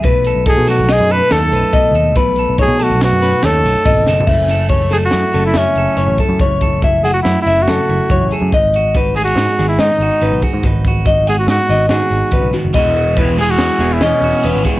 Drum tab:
CC |------------------------------|------------------------------|x-----------------------------|------------------------------|
HH |x--x--x--x--x--x--x--x--x--x--|x--x--x--x--x--x--x--x--x-----|---x--x--x--x--x--x--x--x--x--|x--x--x--x--x--x--x--x--x--x--|
SD |---------o--o-----o-----------|------------o--o--o--------o--|---o-----o--o-----o-----------|------------o-----o-----------|
FT |------------------------------|-----------------------------o|------------------------------|------------------------------|
BD |o-----o-----------------o-----|o-----o-----------------o-----|o-----o--------------------o--|o--o--o-----------------o-----|

CC |------------------------------|------------------------------|------------------------------|
HH |x--x--x--x--x--x--x--x--x--x--|x--x--x--x--x--x--x--x--x--x--|x--x--x--x--x--x--x--x--x--x--|
SD |------------o--o--o-----------|------------o-----o--------o--|------------o-----o-----------|
FT |------------------------------|------------------------------|------------------------------|
BD |o-----o--------------------o--|o--o--o-----------------o-----|o-----o--------------------o--|